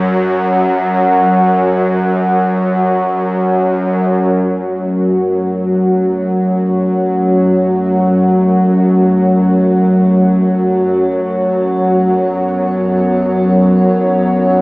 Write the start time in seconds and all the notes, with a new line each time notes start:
Already playing: F#2 F#3
4.09 F#2 F#3 A3
5.24 F#4
7.70 C#5
12.10 B3
13.35 D#4